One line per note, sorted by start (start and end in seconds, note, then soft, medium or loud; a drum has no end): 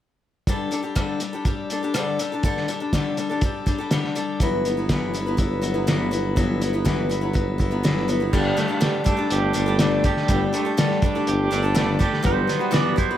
0.47 0.72 G2 medium
0.47 0.72 D3 medium
0.47 0.70 G3 medium
0.47 0.71 D4 medium
0.47 0.71 G4 medium
0.47 0.72 A4 medium
0.47 kick medium
0.47 closed hi-hat medium
0.71 0.83 G3 medium
0.71 0.83 D4 medium
0.71 0.82 G4 medium
0.71 0.81 A4 medium
0.71 closed hi-hat medium
0.83 0.94 G3 soft
0.83 0.95 D4 soft
0.83 0.95 G4 soft
0.83 0.95 A4 soft
0.95 1.20 G2 medium
0.95 1.20 D3 medium
0.95 1.19 G3 medium
0.95 1.20 D4 medium
0.95 1.21 G4 medium
0.95 1.21 A4 medium
0.95 kick medium
0.95 cross-stick medium
0.95 closed hi-hat medium
1.20 1.33 G3 medium
1.20 1.33 D4 medium
1.20 1.33 G4 medium
1.20 1.32 A4 medium
1.20 closed hi-hat medium
1.33 1.44 G3 soft
1.33 1.45 D4 soft
1.33 1.46 G4 soft
1.33 1.45 A4 soft
1.45 1.69 G3 medium
1.45 1.70 D4 medium
1.45 1.70 G4 medium
1.45 1.71 A4 medium
1.45 kick medium
1.45 closed hi-hat medium
1.70 1.82 G3 soft
1.70 1.83 D4 medium
1.70 1.83 G4 medium
1.70 1.82 A4 medium
1.70 closed hi-hat medium
1.83 1.94 G3 soft
1.83 1.94 D4 soft
1.83 1.94 G4 medium
1.83 1.94 A4 soft
1.94 2.19 G2 medium
1.94 2.19 D3 medium
1.94 2.18 G3 medium
1.94 2.19 D4 medium
1.94 2.19 G4 medium
1.94 2.19 A4 medium
1.94 cross-stick medium
1.94 closed hi-hat medium
2.19 2.31 G3 medium
2.19 2.32 D4 medium
2.19 2.32 G4 medium
2.19 2.31 A4 medium
2.19 closed hi-hat medium
2.32 2.43 G3 soft
2.32 2.44 D4 soft
2.32 2.44 G4 soft
2.32 2.44 A4 soft
2.43 2.68 G2 medium
2.43 2.68 D3 medium
2.43 2.67 G3 medium
2.43 2.67 D4 medium
2.43 2.69 G4 medium
2.43 2.69 A4 medium
2.43 kick medium
2.43 closed hi-hat medium
2.57 snare soft
2.68 2.80 G3 medium
2.68 2.80 D4 medium
2.68 2.79 G4 medium
2.68 2.79 A4 medium
2.68 closed hi-hat medium
2.80 2.92 G3 soft
2.80 2.93 D4 soft
2.80 2.93 G4 soft
2.80 2.92 A4 soft
2.93 3.17 G2 medium
2.93 3.18 D3 medium
2.93 3.16 G3 medium
2.93 3.17 D4 medium
2.93 3.18 G4 medium
2.93 3.18 A4 medium
2.93 kick medium
2.93 snare medium
2.93 closed hi-hat medium
3.17 3.30 G3 medium
3.17 3.30 D4 medium
3.17 3.30 G4 medium
3.17 3.28 A4 medium
3.17 closed hi-hat medium
3.29 3.42 G3 soft
3.29 3.42 D4 soft
3.29 3.42 G4 soft
3.29 3.42 A4 soft
3.41 3.65 G3 medium
3.41 3.66 D4 medium
3.41 3.67 G4 medium
3.41 3.67 A4 medium
3.41 kick medium
3.41 closed hi-hat medium
3.66 3.78 G3 medium
3.66 3.79 D4 medium
3.66 3.79 G4 medium
3.66 3.77 A4 medium
3.66 kick medium
3.66 closed hi-hat medium
3.78 3.91 G3 soft
3.78 3.91 D4 soft
3.78 3.91 G4 soft
3.78 3.91 A4 soft
3.91 4.16 G2 medium
3.91 4.16 D3 medium
3.91 4.14 G3 medium
3.91 4.15 D4 medium
3.91 4.15 G4 medium
3.91 4.16 A4 medium
3.91 snare medium
3.91 closed hi-hat medium
4.04 snare soft
4.15 4.40 G3 medium
4.15 4.40 D4 medium
4.15 4.41 G4 medium
4.15 4.41 A4 medium
4.15 closed hi-hat medium
4.40 8.30 G1 medium
4.40 4.65 G2 medium
4.40 4.65 E3 medium
4.40 4.64 F#3 medium
4.40 4.65 B3 medium
4.40 4.66 E4 medium
4.40 4.66 B4 medium
4.40 kick medium
4.40 closed hi-hat medium
4.65 4.77 F#3 medium
4.65 4.77 B3 medium
4.65 4.77 E4 medium
4.65 4.76 B4 medium
4.65 closed hi-hat medium
4.77 4.89 F#3 soft
4.77 4.89 B3 soft
4.77 4.90 E4 soft
4.77 4.89 B4 soft
4.89 5.14 G2 medium
4.89 5.14 E3 medium
4.89 5.12 F#3 medium
4.89 5.13 B3 medium
4.89 5.14 E4 medium
4.89 5.14 B4 medium
4.89 kick medium
4.89 snare loud
4.89 closed hi-hat medium
5.14 5.26 F#3 medium
5.14 5.27 B3 medium
5.14 5.26 E4 medium
5.14 5.25 B4 medium
5.14 closed hi-hat medium
5.26 5.36 F#3 soft
5.26 5.37 B3 soft
5.26 5.37 E4 medium
5.26 5.38 B4 soft
5.37 5.60 F#3 medium
5.37 5.61 B3 medium
5.37 5.61 E4 medium
5.37 5.62 B4 medium
5.37 kick loud
5.37 closed hi-hat medium
5.61 5.75 F#3 medium
5.61 5.74 B3 medium
5.61 5.73 E4 medium
5.61 5.73 B4 medium
5.61 closed hi-hat medium
5.74 5.86 F#3 soft
5.74 5.87 B3 soft
5.74 5.87 E4 soft
5.74 5.87 B4 medium
5.87 6.12 G2 medium
5.87 6.12 E3 medium
5.87 6.10 F#3 medium
5.87 6.10 B3 medium
5.87 6.11 E4 medium
5.87 6.12 B4 medium
5.87 snare medium
5.87 closed hi-hat medium
6.11 6.36 F#3 medium
6.11 6.37 B3 medium
6.11 6.36 E4 medium
6.11 6.37 B4 medium
6.11 closed hi-hat medium
6.36 6.61 G2 medium
6.36 6.61 E3 medium
6.36 6.60 F#3 medium
6.36 6.60 B3 medium
6.36 6.61 E4 medium
6.36 6.62 B4 medium
6.36 kick medium
6.36 closed hi-hat medium
6.61 6.74 F#3 medium
6.61 6.74 B3 medium
6.61 6.73 E4 medium
6.61 6.72 B4 medium
6.61 closed hi-hat medium
6.73 6.84 F#3 soft
6.73 6.84 B3 soft
6.73 6.85 E4 soft
6.73 6.85 B4 soft
6.85 7.10 G2 medium
6.85 7.10 E3 medium
6.85 7.08 F#3 medium
6.85 7.09 B3 medium
6.85 7.09 E4 medium
6.85 7.10 B4 medium
6.85 kick medium
6.85 snare medium
6.85 closed hi-hat medium
7.09 7.22 F#3 medium
7.09 7.21 B3 medium
7.09 7.20 E4 medium
7.09 7.20 B4 medium
7.09 closed hi-hat medium
7.21 7.32 F#3 soft
7.21 7.33 B3 soft
7.21 7.33 E4 soft
7.21 7.34 B4 soft
7.33 7.57 F#3 medium
7.33 7.58 B3 medium
7.33 7.59 E4 medium
7.33 7.60 B4 medium
7.33 kick loud
7.33 closed hi-hat medium
7.58 7.71 F#3 medium
7.58 7.71 B3 medium
7.58 7.70 E4 medium
7.58 7.70 B4 medium
7.58 kick medium
7.58 closed hi-hat soft
7.71 7.83 F#3 soft
7.71 7.83 B3 soft
7.71 7.84 E4 soft
7.71 7.83 B4 medium
7.83 8.08 G2 medium
7.83 8.08 E3 medium
7.83 8.07 F#3 medium
7.83 8.07 B3 medium
7.83 8.08 E4 medium
7.83 8.08 B4 medium
7.83 snare loud
7.83 closed hi-hat medium
7.97 snare soft
8.08 8.21 F#3 medium
8.08 8.20 B3 medium
8.08 8.20 E4 medium
8.08 8.19 B4 medium
8.08 closed hi-hat soft
8.20 8.33 F#3 soft
8.20 8.33 B3 soft
8.20 8.33 E4 soft
8.20 8.33 B4 soft
8.33 8.54 G1 medium
8.33 8.58 G2 medium
8.33 8.58 D3 medium
8.33 8.55 G3 medium
8.33 8.56 D4 medium
8.33 8.57 G4 medium
8.33 8.58 A4 medium
8.33 kick loud
8.33 crash medium
8.57 8.70 G3 medium
8.57 9.80 A3 medium
8.57 8.68 D4 medium
8.57 8.68 G4 medium
8.57 8.67 A4 medium
8.57 snare soft
8.57 closed hi-hat medium
8.68 8.79 G3 soft
8.68 8.80 D4 soft
8.68 8.80 G4 soft
8.68 8.81 A4 medium
8.80 9.06 G2 medium
8.80 9.06 D3 medium
8.80 9.03 G3 medium
8.80 9.04 D4 medium
8.80 9.05 G4 medium
8.80 9.05 A4 medium
8.80 snare loud
8.80 closed hi-hat medium
9.04 9.17 G3 medium
9.04 9.17 D4 medium
9.04 9.16 G4 medium
9.04 9.16 A4 medium
9.04 kick medium
9.04 closed hi-hat medium
9.17 9.52 G3 soft
9.17 9.53 D4 soft
9.17 9.54 G4 soft
9.17 9.55 A4 medium
9.30 9.51 G1 medium
9.30 10.05 G4 medium
9.30 closed hi-hat medium
9.53 10.16 G1 medium
9.53 9.67 G3 medium
9.53 9.67 D4 medium
9.53 9.66 G4 medium
9.53 9.65 A4 medium
9.53 closed hi-hat medium
9.66 9.79 G3 soft
9.66 9.79 D4 soft
9.66 9.79 G4 medium
9.66 9.79 A4 medium
9.79 10.04 G2 medium
9.79 10.04 D3 medium
9.79 10.02 G3 medium
9.79 10.53 A3 medium
9.79 10.03 D4 medium
9.79 10.04 G4 medium
9.79 10.04 A4 medium
9.79 snare loud
9.79 closed hi-hat medium
10.04 10.29 G3 medium
10.04 10.28 D4 medium
10.04 10.29 G4 medium
10.04 10.29 A4 medium
10.04 kick medium
10.04 closed hi-hat medium
10.17 snare soft
10.28 10.49 G1 medium
10.28 10.53 G2 medium
10.28 10.54 D3 medium
10.28 10.51 G3 medium
10.28 10.52 D4 medium
10.28 10.53 G4 medium
10.28 10.53 A4 medium
10.28 kick loud
10.28 closed hi-hat medium
10.53 10.65 G3 medium
10.53 11.75 A3 medium
10.53 10.65 D4 medium
10.53 10.65 G4 medium
10.53 10.64 A4 medium
10.53 closed hi-hat medium
10.65 10.76 G3 soft
10.65 10.77 D4 soft
10.65 10.77 G4 soft
10.65 10.78 A4 medium
10.77 11.02 G2 medium
10.77 11.02 D3 medium
10.77 11.02 G3 medium
10.77 11.03 D4 medium
10.77 11.03 G4 medium
10.77 11.03 A4 medium
10.77 snare loud
10.77 closed hi-hat medium
10.91 snare soft
11.02 11.15 G3 medium
11.02 11.15 D4 medium
11.02 11.14 G4 medium
11.02 11.14 A4 medium
11.02 kick medium
11.02 closed hi-hat medium
11.15 11.49 G3 soft
11.15 11.50 D4 soft
11.15 11.51 G4 medium
11.15 11.51 A4 medium
11.27 11.47 G1 medium
11.27 12.00 G4 medium
11.27 closed hi-hat medium
11.51 12.12 G1 medium
11.51 11.63 G3 medium
11.51 11.63 D4 medium
11.51 11.63 G4 medium
11.51 11.61 A4 medium
11.51 closed hi-hat medium
11.63 11.74 G3 soft
11.63 11.74 D4 soft
11.63 11.74 G4 medium
11.63 11.75 A4 medium
11.74 12.00 G2 medium
11.74 12.00 D3 medium
11.74 11.98 G3 medium
11.74 12.25 A3 medium
11.74 11.98 D4 medium
11.74 11.99 G4 medium
11.74 12.00 A4 medium
11.74 snare loud
11.74 closed hi-hat medium
11.99 12.23 G3 medium
11.99 12.23 D4 medium
11.99 12.23 G4 medium
11.99 12.24 A4 medium
11.99 kick medium
11.99 closed hi-hat medium
12.14 snare soft
12.22 12.45 G1 medium
12.22 12.48 G2 medium
12.22 12.48 E3 medium
12.22 12.46 F#3 medium
12.22 12.74 G3 medium
12.22 12.47 B3 medium
12.22 12.48 F#4 medium
12.22 12.48 B4 medium
12.22 kick loud
12.22 closed hi-hat medium
12.26 12.73 C5 medium
12.47 12.60 F#3 medium
12.47 12.60 B3 medium
12.47 12.59 F#4 medium
12.47 12.58 B4 medium
12.47 snare soft
12.47 closed hi-hat medium
12.59 12.70 F#3 soft
12.59 12.71 B3 soft
12.59 12.71 F#4 soft
12.59 12.71 B4 soft
12.71 12.97 G2 medium
12.71 12.97 E3 medium
12.71 12.95 F#3 medium
12.71 13.18 G3 medium
12.71 12.96 B3 medium
12.71 12.96 F#4 medium
12.71 12.97 B4 medium
12.71 snare loud
12.71 closed hi-hat medium
12.75 12.98 D5 medium
12.96 13.09 F#3 medium
12.96 13.10 B3 medium
12.96 13.18 E4 medium
12.96 13.10 F#4 medium
12.96 13.09 B4 medium
12.96 13.18 C5 medium
12.96 kick medium
12.96 closed hi-hat medium
13.10 13.18 B3 soft
13.10 13.18 F#4 medium
13.10 13.18 B4 soft